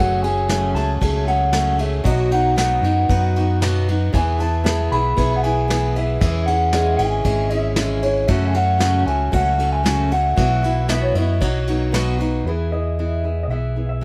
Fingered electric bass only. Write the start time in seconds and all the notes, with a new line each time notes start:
0.00 F#1
0.74 C#2
1.01 C#2
2.05 B1
2.82 F#2
3.09 F#2
4.14 E2
4.91 B1
5.17 B1
6.21 E2
6.99 G#1
7.25 G#1
8.29 F#2
9.06 C#2
9.33 C#2
10.37 B1
11.14 F#2
11.41 B1
12.44 E2
13.48 B1